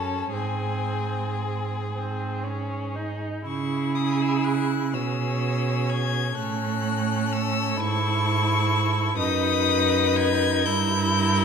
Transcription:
Already playing: F#2 C#4 A4 A5
0.32 G#2 C4 G#4 G#5
1.93 C4
2.44 C#4
2.96 D#4
3.46 C#3 E4 G#4 C#6
3.95 D#6
4.21 E6
4.44 F#6
4.93 B2 C#4 G#4 E6
5.89 G#6
6.36 A2 C#4 A4 F#6
7.32 E6
7.77 G#2 E4 C#6
9.17 F#2 D#4 B4 D#6
10.16 G#6
10.65 G2 E4 A#4 G6

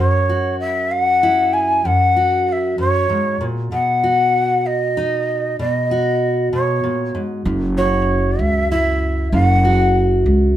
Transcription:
Already playing: F#2 C#5
0.29 F#4
0.60 E5
0.92 F#5
1.23 E4
1.53 G#5
1.85 F#2 F#5
2.17 F#4
2.49 E5 F#5
2.78 F#2 C#5
3.10 G#2
3.41 A#2
3.72 B2 F#5
4.04 F#4
4.66 D#5
4.97 D#4
5.59 B2 D#5
5.91 F#4
6.53 B2 C#5
6.84 A#2
7.15 G#2
7.45 F#1 F#2
7.77 F#4 C#5
8.39 C#2 E5
8.71 E4 E5
9.32 F#1 F#2 F#5
9.65 F#4
10.26 C#2

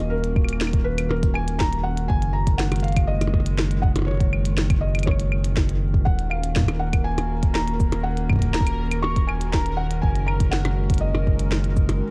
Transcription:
Already playing: D#1 D#3 A#3 C#4 F#4 A#4 D#5
0.10 A#4
0.24 closed hi-hat
0.36 kick, claves
0.45 claves
0.49 closed hi-hat
0.53 claves
0.61 snare
0.67 claves
0.73 kick, closed hi-hat
0.84 B4
0.98 closed hi-hat, claves
1.09 A#4, percussion blips
1.23 kick, closed hi-hat
1.34 G#5, claves
1.48 closed hi-hat
1.59 A#5, kick, snare
1.73 closed hi-hat
1.83 F#5
1.97 closed hi-hat
2.08 F#1 G#5, kick
2.22 G#3, closed hi-hat
2.33 A#5
2.47 kick, closed hi-hat
2.58 F#5, snare
2.72 closed hi-hat, percussion blips, claves
2.76 closed hi-hat
2.80 F5, closed hi-hat
2.84 closed hi-hat
2.88 closed hi-hat
2.92 closed hi-hat
2.97 kick, closed hi-hat, claves
3.07 D#5
3.21 closed hi-hat, percussion blips, claves
3.27 percussion blips
3.34 kick, percussion blips
3.40 percussion blips
3.46 closed hi-hat
3.59 snare, claves
3.71 closed hi-hat
3.82 F#5, kick
3.96 closed hi-hat, percussion blips
3.99 percussion blips
4.02 percussion blips
4.05 C#5, percussion blips
4.08 percussion blips
4.11 percussion blips
4.14 percussion blips
4.17 kick, closed hi-hat, percussion blips
4.33 claves
4.45 closed hi-hat
4.58 snare
4.70 kick, closed hi-hat, claves
4.81 D#5
4.95 closed hi-hat, claves
4.99 closed hi-hat
5.03 C#5, closed hi-hat, claves
5.07 kick, percussion blips
5.11 claves
5.20 closed hi-hat
5.32 claves
5.44 closed hi-hat
5.57 kick, snare
5.69 closed hi-hat
5.94 kick
6.05 D#1 A#4 F#5, kick
6.19 C#4, closed hi-hat
6.30 A#3 F5, claves
6.44 closed hi-hat
6.56 kick, snare
6.59 kick
6.61 kick
6.63 kick
6.66 kick, closed hi-hat, percussion blips, claves
6.79 F#4 F#5
6.92 A#4, kick, closed hi-hat, claves
7.04 G#5
7.18 closed hi-hat, percussion blips, claves
7.43 kick, closed hi-hat
7.54 A#5, snare, claves
7.68 closed hi-hat
7.80 kick, cabasa
7.92 closed hi-hat, percussion blips
8.03 F#5
8.17 closed hi-hat
8.30 kick, claves
8.33 kick
8.36 kick
8.39 kick, closed hi-hat
8.42 kick
8.45 kick
8.48 kick
8.51 A#5, kick, snare
8.61 kick
8.67 closed hi-hat, cabasa, claves
8.91 closed hi-hat, cabasa, claves
9.02 C#6, percussion blips
9.16 kick, closed hi-hat
9.27 G#5, claves
9.41 closed hi-hat
9.52 A#5, kick, snare
9.66 closed hi-hat
9.77 F#5
9.91 closed hi-hat
10.02 F#1 G#5, kick
10.15 closed hi-hat
10.26 A#5, claves
10.32 G#3
10.40 kick, closed hi-hat
10.51 F#5, snare
10.65 closed hi-hat, percussion blips, claves
10.90 kick, closed hi-hat
10.94 closed hi-hat
10.98 D#5, closed hi-hat
11.15 percussion blips, claves
11.27 kick
11.39 closed hi-hat
11.52 snare, claves
11.64 closed hi-hat
11.77 kick, cabasa
11.89 closed hi-hat, percussion blips

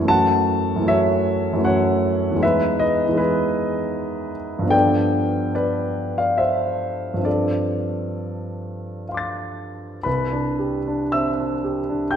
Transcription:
Already playing: E2 F#2 G#3 E4 F#4 A4 C#5
0.00 E3 A3
0.05 C#4 F#4 A5
0.10 F#5
0.76 F#2 E3
0.82 A3 C#4
0.87 F#4 C#5 E5
1.53 F#2 E3
1.58 A3 C#4
1.64 F#4 C#5 F#5
2.31 E2 E3
2.36 G#3 D#4
2.42 G#4 B4 E5
2.80 B4 D#5
3.06 E2 E3
3.11 G#3 D#4
3.17 G#4 B4
4.59 G2 F3
4.64 B3 D4
4.70 A4 D5 G5
5.55 B4 D5
6.18 D5 F5
6.38 C5 E5
7.14 G2 F3
7.18 C4 D4
7.25 A4 D5
9.09 F5 C6
9.14 D6 A6
10.03 C2 B4 B5
10.32 D4
10.59 G4
10.88 D4
11.12 C4 E5 E6
11.39 D4
11.64 G4
11.89 D4
12.11 G5 G6

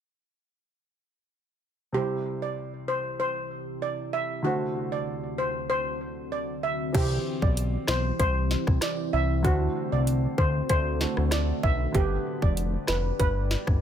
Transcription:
1.92 C2 C3 G3 E4 G4
1.97 C5
2.42 D5
2.88 C5
3.20 C5
3.82 D5
4.13 E5
4.42 D2 D3 A3 C4 F#4
4.47 C5
4.92 D5
5.38 C5
5.70 C5
6.32 D5
6.63 E5
6.93 C2 E3 C4 E4 G4, kick, closed hi-hat, crash
6.97 C5
7.42 B1 D5, kick
7.57 closed hi-hat
7.88 B1 C5, cross-stick, snare
8.20 C2 C5, kick, closed hi-hat
8.51 snare
8.67 C2, kick, cross-stick
8.81 D5, cross-stick, snare, closed hi-hat
9.13 C2 E5
9.43 D2 D3 A3 F#4, kick, closed hi-hat
9.47 C5
9.92 C2 D5
10.07 closed hi-hat
10.38 D2 C5, kick
10.69 D2 C5, kick, closed hi-hat
11.00 D3 A3 F#4 C5, snare
11.17 D2, cross-stick
11.31 D5, cross-stick, snare, closed hi-hat
11.63 B1 E5, kick
11.92 G1 D3 G3 B3 G4 B4 D5, kick, closed hi-hat
11.97 B4
12.42 F1 D5, kick
12.57 closed hi-hat
12.87 F1 B4, cross-stick, snare
13.20 G1 B4, kick, closed hi-hat
13.51 snare
13.67 G1, kick, cross-stick

